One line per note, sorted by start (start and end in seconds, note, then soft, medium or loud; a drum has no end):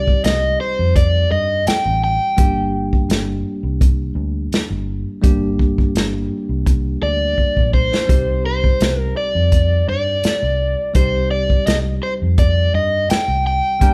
0.00 0.15 C2 medium
0.00 2.33 G3 medium
0.00 2.33 C4 medium
0.00 2.34 D#4 medium
0.00 2.34 G4 medium
0.00 0.22 D5 medium
0.08 kick medium
0.24 0.55 C2 medium
0.24 0.60 D#5 medium
0.24 snare loud
0.24 closed hi-hat medium
0.61 0.96 C5 medium
0.79 1.25 F2 medium
0.96 1.31 D5 medium
0.96 kick loud
0.96 closed hi-hat medium
1.31 1.63 G2 medium
1.31 1.64 D#5 medium
1.67 2.03 G5 medium
1.67 muted fingered electric bass stroke soft
1.67 snare loud
1.67 closed hi-hat medium
1.85 2.17 A1 medium
2.04 4.13 G5 medium
2.37 3.01 G1 medium
2.37 5.19 G3 medium
2.37 5.19 A#3 medium
2.37 5.19 D4 medium
2.37 5.20 G4 medium
2.37 kick loud
2.37 closed hi-hat medium
2.93 kick medium
3.09 3.40 G1 medium
3.09 snare loud
3.09 closed hi-hat medium
3.63 4.10 C2 medium
3.81 kick loud
3.81 closed hi-hat medium
4.15 4.47 D2 medium
4.51 muted fingered electric bass stroke soft
4.51 snare loud
4.51 closed hi-hat soft
4.70 5.02 G1 medium
5.22 5.86 G1 medium
5.22 8.04 G3 medium
5.22 8.04 A#3 medium
5.22 8.05 D4 medium
5.22 8.05 G4 medium
5.22 kick loud
5.22 closed hi-hat medium
5.59 kick medium
5.78 kick medium
5.95 6.26 G1 medium
5.95 snare loud
5.95 closed hi-hat medium
6.49 6.95 C2 medium
6.66 kick loud
6.66 closed hi-hat medium
7.02 7.33 D2 medium
7.02 7.70 D5 medium
7.38 kick medium
7.57 7.88 A#1 medium
7.57 kick medium
7.74 8.45 C5 medium
7.74 kick medium
7.94 snare medium
8.07 8.72 C2 medium
8.07 10.90 G3 medium
8.07 10.90 C4 medium
8.07 10.91 D#4 medium
8.07 10.91 G4 medium
8.07 kick loud
8.07 closed hi-hat medium
8.46 9.00 C5 medium
8.64 kick medium
8.80 9.12 C2 medium
8.80 snare loud
8.80 closed hi-hat medium
9.00 9.17 A#4 medium
9.17 9.88 D5 medium
9.35 9.81 F2 medium
9.52 kick medium
9.52 closed hi-hat medium
9.88 10.19 G2 medium
9.88 10.95 D5 medium
10.23 muted fingered electric bass stroke soft
10.23 snare loud
10.23 closed hi-hat medium
10.43 10.74 C2 medium
10.94 11.58 C2 medium
10.94 13.76 G3 medium
10.94 13.77 C4 medium
10.94 13.77 D#4 medium
10.94 13.77 G4 medium
10.94 11.31 C5 medium
10.94 kick loud
10.94 closed hi-hat medium
11.31 11.66 D5 medium
11.50 kick medium
11.67 11.98 C2 medium
11.67 11.76 D#5 medium
11.67 snare loud
11.67 closed hi-hat medium
12.03 12.13 C5 medium
12.22 12.68 F2 medium
12.38 12.75 D5 loud
12.38 kick loud
12.38 closed hi-hat medium
12.74 13.05 G2 medium
12.74 13.08 D#5 medium
13.10 13.46 G5 medium
13.10 muted fingered electric bass stroke soft
13.10 snare loud
13.10 closed hi-hat medium
13.28 13.60 C2 medium
13.47 13.94 G5 medium
13.79 13.94 G1 medium
13.79 13.94 G3 medium
13.79 13.94 A#3 medium
13.79 13.94 D4 medium
13.79 13.94 G4 medium
13.79 13.94 A#4 medium
13.79 13.94 D5 medium
13.79 13.94 G5 medium
13.79 kick loud
13.79 closed hi-hat medium